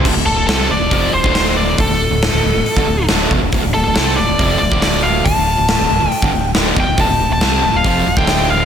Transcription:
0.04 fingered electric bass D1, distorted electric guitar D2 A2, kick, crash
0.15 fingered electric bass D1, distorted electric guitar D2 A2
0.25 fingered electric bass D1, distorted electric guitar D2 A2, lead electric guitar A4
0.35 fingered electric bass D1, distorted electric guitar D2 A2, lead electric guitar A4
0.46 fingered electric bass C2, distorted electric guitar C3 G3 C4, lead electric guitar A4, snare, open hi-hat
0.69 fingered electric bass D1, distorted electric guitar D2 A2, lead electric guitar D5
0.80 fingered electric bass D1, distorted electric guitar D2 A2
0.89 fingered electric bass F1, distorted electric guitar F2 C3 F3, kick, open hi-hat
1.12 fingered electric bass D1, distorted electric guitar D2 A2, lead electric guitar C5
1.23 fingered electric bass D1, distorted electric guitar D2 A2 D3, kick
1.35 lead electric guitar C5, snare, open hi-hat
1.57 lead electric guitar D5
1.78 fingered electric bass D1, distorted electric guitar D2 A2, lead electric guitar A4, kick, open hi-hat
1.89 fingered electric bass D1, distorted electric guitar D2 A2
2.10 fingered electric bass D1, distorted electric guitar D2 A2
2.22 snare, open hi-hat
2.33 fingered electric bass D1, distorted electric guitar D2 A2
2.44 fingered electric bass D1, distorted electric guitar D2 A2
2.55 fingered electric bass D1, distorted electric guitar D2 A2
2.66 muted overdriven electric guitar stroke, muted distorted electric guitar stroke, open hi-hat
2.76 fingered electric bass G1, distorted electric guitar G2 D3, kick
2.88 fingered electric bass D1, distorted electric guitar D2 A2
3.08 fingered electric bass D1, distorted electric guitar D2 A2 D3, snare, open hi-hat
3.31 fingered electric bass E1, distorted electric guitar E2 B2, kick
3.42 fingered electric bass D1, distorted electric guitar D2 A2
3.52 fingered electric bass D1, distorted electric guitar D2 A2, kick, open hi-hat
3.64 fingered electric bass D1, distorted electric guitar D2 A2
3.74 fingered electric bass D1, distorted electric guitar D2 A2, lead electric guitar A4
3.84 fingered electric bass D1, distorted electric guitar D2 A2, lead electric guitar A4
3.95 fingered electric bass C2, distorted electric guitar C3 G3 C4, lead electric guitar A4, snare, open hi-hat
4.16 fingered electric bass D1, distorted electric guitar D2 A2, lead electric guitar D5
4.29 fingered electric bass D1, distorted electric guitar D2 A2
4.39 fingered electric bass F1, distorted electric guitar F2 C3 F3, kick, open hi-hat
4.58 fingered electric bass D1, distorted electric guitar D2 A2, lead electric guitar D5
4.71 fingered electric bass D1, distorted electric guitar D2 A2 D3, kick
4.82 lead electric guitar D5, snare, open hi-hat
5.03 lead electric guitar F5
5.25 fingered electric bass D1, distorted electric guitar D2 A2, lead electric guitar A5, kick, open hi-hat
5.36 fingered electric bass D1, distorted electric guitar D2 A2
5.57 fingered electric bass D1, distorted electric guitar D2 A2
5.68 snare, open hi-hat
5.79 fingered electric bass D1, distorted electric guitar D2 A2
5.89 fingered electric bass D1, distorted electric guitar D2 A2
6.00 fingered electric bass D1, distorted electric guitar D2 A2
6.11 lead electric guitar G5, muted overdriven electric guitar stroke, muted distorted electric guitar stroke, muted fingered electric bass stroke, open hi-hat
6.22 fingered electric bass G1, distorted electric guitar G2 D3, kick
6.33 fingered electric bass D1, distorted electric guitar D2 A2
6.55 fingered electric bass D1, distorted electric guitar D2 A2 D3, snare, open hi-hat
6.76 fingered electric bass E1, distorted electric guitar E2 B2, kick
6.80 lead electric guitar G5
6.87 fingered electric bass D1, distorted electric guitar D2 A2
6.98 fingered electric bass D1, distorted electric guitar D2 A2, lead electric guitar A5, kick, open hi-hat
7.08 fingered electric bass D1, distorted electric guitar D2 A2
7.18 fingered electric bass D1, distorted electric guitar D2 A2
7.30 fingered electric bass D1, distorted electric guitar D2 A2, lead electric guitar A5
7.41 fingered electric bass C2, distorted electric guitar C3 G3 C4, snare, open hi-hat
7.63 fingered electric bass D1, distorted electric guitar D2 A2
7.74 fingered electric bass D1, distorted electric guitar D2 A2, lead electric guitar F5
7.84 fingered electric bass F1, distorted electric guitar F2 C3 F3, kick, open hi-hat
8.06 fingered electric bass D1, distorted electric guitar D2 A2
8.17 fingered electric bass D1, distorted electric guitar D2 A2 D3, lead electric guitar G5, kick
8.27 snare, open hi-hat
8.50 lead electric guitar F5

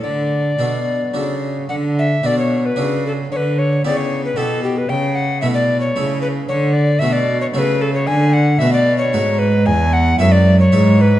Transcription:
0.02 cello D3, harpsichord D3, recorder D5
0.59 cello B2, harpsichord B2 D4 F#4 A4
1.14 harpsichord C#3 D4 F#4 A4, cello C#3
1.69 harpsichord D3, cello D3, recorder F#5
1.99 recorder E5
2.23 harpsichord B2 D4 F#4 A4, cello B2, recorder D5
2.39 recorder C#5
2.66 recorder B4
2.76 harpsichord C#3 D4 F#4 A4, cello C#3
3.07 recorder A4
3.32 harpsichord D3, cello D3, recorder C#5
3.37 recorder B4
3.59 recorder C#5
3.85 harpsichord C#3 B3 E4 G4, cello C#3, recorder D5
3.97 recorder C#5
4.25 recorder B4
4.36 harpsichord B2 B3 E4 G4, cello B2, recorder A4
4.64 recorder G4
4.78 recorder B4
4.89 cello C#3, harpsichord C#3, recorder G5
5.15 recorder F#5
5.41 harpsichord B2 A3 E4 A4, cello B2, recorder E5
5.54 recorder D5
5.80 recorder C#5
5.96 harpsichord C#3 A3 E4 A4, cello C#3
6.21 recorder B4
6.48 harpsichord D3, cello D3, recorder C#5
6.73 recorder D5
6.99 harpsichord B2 A3 F#4 A4, cello B2, recorder E5
7.13 recorder D5
7.41 recorder C#5
7.54 harpsichord C#3 A3 F#4 A4, cello C#3, recorder C#5
7.58 recorder B4
7.81 recorder A4
7.94 recorder C#5
8.07 harpsichord D3, cello D3, recorder G#5
8.33 recorder F#5
8.59 harpsichord B2 A3 F#4 B4, cello B2, recorder E5
8.73 recorder D5
8.98 recorder C#5
9.13 harpsichord G#2 A3 F#4 B4, cello G#2
9.39 recorder B4
9.66 harpsichord E2, cello E2, recorder G#5
9.93 recorder F#5
10.19 harpsichord F#2 G#3 E4 B4, cello F#2, recorder E5
10.32 recorder D5
10.60 recorder C#5
10.72 harpsichord G#2 G#3 E4 B4, cello G#2
11.01 recorder B4

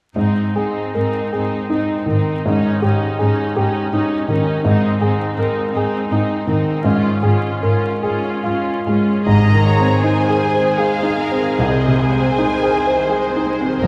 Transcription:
0.15 cello section G#2, grand piano G#2, viola section C4 D#4
0.56 cello section G#2, viola section C4 D#4, grand piano G#4
0.95 cello section G#2, viola section C4 D#4, grand piano A#4
1.33 cello section G#2, viola section C4 D#4, grand piano G#4
1.70 cello section G#2, viola section C4 D#4, grand piano D#4
2.06 cello section G#2, grand piano D#3, viola section D#4
2.10 viola section C4
2.45 grand piano G#2, cello section G#2, viola section C#4 D#4
2.82 cello section G#2, viola section C#4 D#4, grand piano G4
3.19 cello section G#2, viola section C#4 D#4, grand piano G#4
3.57 cello section G#2, viola section C#4 D#4, grand piano G4
3.92 cello section G#2, viola section C#4 D#4, grand piano D#4
4.28 cello section G#2, grand piano D#3, viola section C#4 D#4
4.64 grand piano G#2, cello section G#2, viola section C4 D#4
5.01 cello section G#2, viola section C4 D#4, grand piano G#4
5.36 cello section G#2, viola section C4 D#4, grand piano A#4
5.72 cello section G#2, viola section C4 D#4
5.76 grand piano G#4
6.10 cello section G#2, viola section C4 D#4, grand piano D#4
6.47 cello section G#2, grand piano D#3, viola section C4 D#4
6.84 grand piano G#2, cello section G#2, viola section C#4 F4
7.23 cello section G#2, viola section C#4 F4, grand piano G#4
7.62 cello section G#2, viola section C#4 F4, grand piano A#4
8.03 cello section G#2, viola section C#4 F4, grand piano G#4
8.43 cello section G#2, viola section C#4 F4, grand piano F4
8.86 cello section G#2, grand piano G#3, viola section C#4 F4
9.25 double bass section G#1, grand piano G#2, cello section G#2, viola section C3 G#4, violin section D#5 A#5
9.46 viola section D#3
9.53 grand piano D#3
9.64 viola section G#3, violin section C#5
9.80 grand piano C4
9.85 viola section C4
10.02 viola section G#3, grand piano D#4, violin section C5 G#5
10.23 viola section D#3
10.29 grand piano G#4
10.41 viola section C3
10.54 grand piano C5
10.60 viola section D#3
10.77 viola section G#3, grand piano G#4, violin section C5 F5
10.99 viola section C4, grand piano D#4
11.16 viola section G#3, violin section A#4
11.31 grand piano C4
11.39 viola section D#3
11.58 grand piano C2, double bass section C2, cello section C3, viola section C3, violin section C5 D#5
11.81 viola section D#3
11.87 grand piano C3
12.01 viola section G#3, violin section G#5
12.12 grand piano C4
12.23 viola section C4
12.38 viola section G#3, grand piano D#4
12.59 viola section D#3
12.63 grand piano G#4
12.76 viola section C3
12.87 grand piano C5
12.94 viola section D#3
13.10 viola section G#3, grand piano G#4
13.30 viola section C4
13.36 grand piano D#4
13.47 viola section G#3
13.60 grand piano C4
13.65 viola section D#3
13.80 double bass section F1, cello section F2, grand piano F2, viola section C3 G#4, violin section A#4 G5

